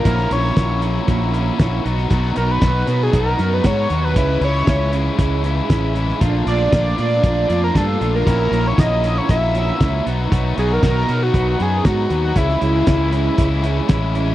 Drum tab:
HH |x-x-x-x-x-x-x-x-|x-x-x-x-x-x-x-x-|x-x-x-x-x-x-x-x-|x-x-x-x-x-x-x-x-|
SD |-o--o-------o--o|----o-------o---|----o-------o--o|----o-------o---|
BD |o---o---o---o---|o---o---o---o---|o---o---o---o---|o---o---o---o---|

HH |x-x-x-x-x-x-x-x-|x-x-x-x-x-x-x-x-|x-x-x-x-x-x-x-x-|
SD |----o-------o---|----o-------o---|-o--o-------o---|
BD |o---o---o---o---|o---o---o---o---|o---o---o---o---|